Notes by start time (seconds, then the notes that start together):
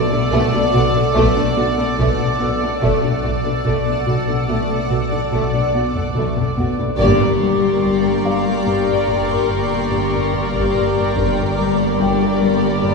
Already playing: B1 B2 A4 D5 F#5
0.10 B2 A3 D4
0.31 B1 B2 A3
0.52 B2 A3 D4
0.72 B1 B2 A3 F#4
0.93 B2 A3 D4
1.13 B1 B2 A3, taiko
1.35 B2 A3 D4
1.57 B1 B2 A3 B3 F#4
1.78 B2 A3 D4
1.99 B1 B2 A3, taiko
2.19 B2 A3 D4
2.39 B1 B2 A3 B3 F#4
2.60 B2 A3 D4
2.81 B1 B2 A3 A4 D5 F#5, taiko
3.02 B2 A3 D4
3.23 B1 B2 A3 F#4
3.45 B2 A3 D4
3.65 B1 B2 A3, taiko
3.85 B2 A3 D4
4.06 B1 B2 A3 F#4
4.28 B2 A3 D4
4.48 B1 B2 A3
4.70 B2 A3 D4
4.90 B1 B2 A3 F#4
5.11 B2 A3 D4
5.32 B1 B2 A3 A5, taiko
5.53 B2 A3 D4
5.73 B1 B2 A3 B3 F#4
5.94 B2 A3 D4, taiko low-mid
6.15 B1 B2 A3, taiko high
6.36 B2 A3 D4, taiko low-mid
6.57 B1 B2 A3 B3 F#4, taiko low-mid
6.79 B2 A3 D4, taiko low
6.98 G1 G2 A#3 G4 A#4 D5 G5 A#5 C6 C#6, taiko
7.41 G3
7.83 G3, taiko
8.25 G3 F5
8.67 G2
9.07 G2, taiko
9.49 G2
9.91 G2
10.33 G2
10.54 taiko
10.75 G2
11.15 G1 G2 A#3 G4 A#4 D5 G5, taiko
11.58 G3
11.99 G3 G5, taiko
12.29 B5
12.42 G3
12.84 G2